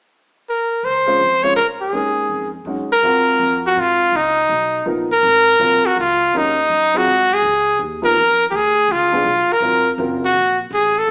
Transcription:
0.49 0.86 A#4 medium
0.83 1.19 C#2 medium
0.83 1.45 C5 medium
1.06 1.18 G#3 soft
1.06 1.19 C#4 soft
1.06 1.19 F4 soft
1.06 1.19 C5 medium
1.20 1.55 F2 medium
1.43 1.55 G#3 soft
1.43 1.55 C#4 soft
1.43 1.55 F4 soft
1.43 1.56 C5 medium
1.43 1.56 C#5 medium
1.55 1.92 G#2 medium
1.55 1.67 A#4 medium
1.81 2.50 G#4 medium
1.92 2.29 D#2 medium
1.92 2.48 G#3 soft
1.92 2.49 C#4 soft
1.92 2.49 D#4 soft
1.92 2.49 A#4 soft
2.29 2.64 F2 medium
2.65 2.88 F#2 medium
2.65 2.88 G#3 soft
2.65 2.88 C#4 soft
2.65 2.88 D#4 soft
2.65 2.89 F#4 soft
2.89 3.61 A#4 medium
2.89 muted upright bass stroke soft
3.02 3.39 G#2 medium
3.02 4.06 C4 soft
3.02 4.06 F4 soft
3.02 4.06 F#4 medium
3.02 4.07 A#4 medium
3.39 3.75 F2 medium
3.66 3.81 F#4 medium
3.76 4.12 G#2 medium
3.76 4.17 F4 medium
4.12 4.48 C#2 medium
4.12 4.88 D#4 medium
4.49 4.85 B1 medium
4.86 5.22 A#1 medium
4.86 5.07 F3 medium
4.86 5.08 B3 soft
4.86 5.08 D#4 soft
4.86 5.08 A#4 medium
5.12 5.87 A#4 loud
5.23 5.59 G#1 medium
5.59 5.82 A#1 medium
5.59 5.81 F#3 medium
5.59 5.81 C4 medium
5.59 5.81 F4 medium
5.59 5.82 A#4 medium
5.84 5.98 F#4 medium
5.84 muted upright bass stroke soft
5.96 6.32 C#2 medium
5.96 6.38 F4 medium
6.33 6.69 D#2 medium
6.33 6.54 F#3 medium
6.33 6.55 C#4 medium
6.33 6.55 D#4 medium
6.33 6.55 A#4 medium
6.37 6.98 D#4 medium
6.70 7.05 F#2 medium
6.94 7.05 F#3 medium
6.94 7.06 C4 medium
6.94 7.06 F4 soft
6.94 7.35 F#4 medium
6.94 7.06 G#4 medium
7.06 7.42 G#2 medium
7.34 7.81 G#4 medium
7.42 7.78 C#2 medium
7.79 8.15 D#2 medium
8.02 8.14 F3 medium
8.02 8.15 B3 medium
8.02 8.15 D#4 medium
8.02 8.15 A#4 medium
8.02 8.45 A#4 medium
8.15 8.51 F2 medium
8.51 8.88 D2 medium
8.51 8.57 G4 medium
8.56 8.93 G#4 medium
8.88 9.24 C#2 medium
8.88 9.54 F4 medium
9.12 9.24 F3 medium
9.12 9.24 B3 medium
9.12 9.25 D4 medium
9.12 9.25 G#4 medium
9.25 9.47 B1 medium
9.48 muted upright bass stroke soft
9.53 9.95 A#4 medium
9.60 9.97 G#1 medium
9.60 9.83 F#3 medium
9.60 9.84 C4 soft
9.60 9.84 F4 medium
9.60 9.84 A#4 medium
9.98 10.33 F#1 medium
9.98 10.20 F#3 medium
9.98 10.20 C4 medium
9.98 10.20 F4 medium
9.98 10.21 A#4 medium
10.25 10.58 F#4 medium
10.34 10.70 A#1 medium
10.71 11.07 A1 medium
10.71 11.00 G#4 medium
10.98 11.11 A4 medium
11.07 11.11 C#2 medium

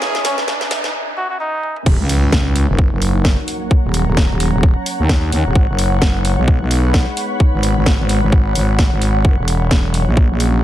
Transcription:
0.00 0.91 E3 medium
0.00 0.21 E3 loud
0.00 0.91 G#3 medium
0.00 0.21 G#3 medium
0.00 0.91 C#4 medium
0.00 0.94 C#4 medium
0.00 0.21 C#4 medium
0.00 0.90 G#4 medium
0.00 0.21 G#4 loud
0.00 0.94 B4 medium
0.00 0.94 E5 medium
0.00 0.94 G#5 medium
0.00 snare loud
0.00 riser medium
0.15 snare medium
0.25 0.38 C#4 medium
0.25 snare loud
0.25 open hi-hat loud
0.38 snare medium
0.48 snare loud
0.61 snare medium
0.71 snare loud
0.71 open hi-hat loud
0.84 snare loud
1.17 1.25 F#4 medium
1.30 1.37 F#4 medium
1.40 1.76 D#4 medium
1.63 high tom medium
1.76 mid tom medium
1.86 1.97 D#1 loud
1.86 5.52 F#3 medium
1.86 5.52 A#3 medium
1.86 3.69 D#4 medium
1.86 5.52 A#4 medium
1.86 10.64 C#5 medium
1.86 kick loud
1.86 crash loud
1.86 impact medium
1.99 2.31 C#2 medium
2.09 open hi-hat loud
2.20 10.64 F#5 medium
2.32 2.67 C#2 medium
2.32 kick loud
2.32 snare loud
2.56 open hi-hat loud
2.69 2.90 F#1 loud
2.79 kick loud
2.92 3.36 F#1 loud
3.02 open hi-hat loud
3.25 5.56 A#5 medium
3.25 kick loud
3.25 snare loud
3.48 open hi-hat loud
3.71 5.54 C#4 medium
3.71 kick loud
3.84 4.05 D#1 medium
3.94 open hi-hat loud
4.07 4.28 D#1 loud
4.17 kick loud
4.17 snare loud
4.30 4.51 D#1 loud
4.40 open hi-hat loud
4.53 4.74 D#1 loud
4.63 kick loud
4.86 open hi-hat loud
4.99 5.31 D#2 loud
5.09 kick loud
5.09 snare loud
5.32 5.43 D#2 loud
5.32 open hi-hat loud
5.46 5.54 D#1 medium
5.55 5.67 G#1 loud
5.55 9.21 G#3 medium
5.55 9.21 B3 medium
5.55 9.21 D#4 medium
5.55 9.21 B4 medium
5.55 kick loud
5.69 6.00 F#1 medium
5.79 open hi-hat loud
6.02 6.36 F#1 loud
6.02 kick loud
6.02 snare loud
6.25 open hi-hat loud
6.38 6.59 B1 loud
6.42 9.25 B5 medium
6.48 kick loud
6.61 7.05 B1 loud
6.71 open hi-hat loud
6.94 kick loud
6.94 snare loud
7.17 open hi-hat loud
7.40 kick loud
7.53 7.74 G#1 medium
7.63 open hi-hat loud
7.76 7.97 G#1 medium
7.86 kick loud
7.86 snare loud
7.99 8.20 G#1 loud
8.09 open hi-hat loud
8.23 8.54 G#1 loud
8.32 kick loud
8.55 8.90 G#1 loud
8.55 open hi-hat loud
8.79 kick loud
8.79 snare loud
8.92 9.23 G#1 loud
9.02 open hi-hat loud
9.25 9.36 F#1 loud
9.25 10.64 F#3 medium
9.25 10.64 A#3 medium
9.25 10.64 C#4 medium
9.25 10.64 G#4 medium
9.25 kick loud
9.38 9.69 E1 medium
9.48 open hi-hat loud
9.71 10.05 E1 medium
9.71 kick loud
9.71 snare loud
9.94 open hi-hat loud
9.99 10.64 A#5 medium
10.07 10.28 A#1 loud
10.17 kick loud
10.30 10.64 A#1 medium
10.40 open hi-hat loud

